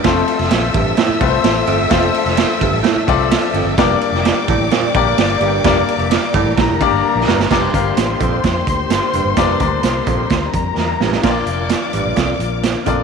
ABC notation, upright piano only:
X:1
M:4/4
L:1/8
Q:1/4=129
K:Gdor
V:1 name="Upright piano"
[A,CFAc]3 z2 [A,CFA=Bc]2 z | [A,CFAc]3 z2 [A,CFAd]2 z | [B,DGBd]3 z2 [B,DGBd]2 z | [B,DGBd]3 z2 [B,DGBd]2 z |
[DGBd] [DGBf]3 z4 | [DGBd] [DGBd]3 z4 | [DFBcd]3 z4 [DFBd] |]